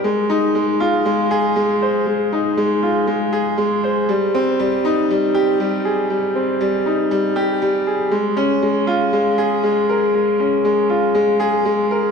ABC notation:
X:1
M:4/4
L:1/8
Q:1/4=119
K:Fm
V:1 name="Upright piano"
A, E A, F A, A A, c | A, E A, F A, A A, c | G, C G, E G, G G, A | G, C G, E G, G G, A |
A, D A, F A, A A, B | A, D A, F A, A A, B |]